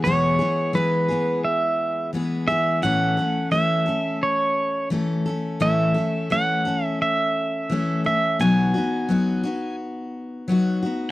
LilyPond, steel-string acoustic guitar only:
\new Staff \with { instrumentName = "Steel-string acoustic guitar" } { \time 4/4 \key e \major \tempo 4 = 86 <e, b, e gis b gis'>8 <e gis b gis'>8 <e gis b gis'>8 <e gis b gis'>4. <e gis b gis'>8 <e gis b gis'>8 | <a, e a cis' a'>8 <a cis' a'>8 <e a cis' a'>8 <a cis' a'>4. <e a cis' a'>8 <a cis' a'>8 | <a, e a cis' a'>8 <a cis' a'>8 <e a cis' a'>8 <a cis' a'>4. <e a cis' a'>8 <a cis' a'>8 | <b, fis b dis' fis'>8 <b dis' fis'>8 <fis b dis' fis'>8 <b dis' fis'>4. <fis b dis' fis'>8 <b dis' fis'>8 | }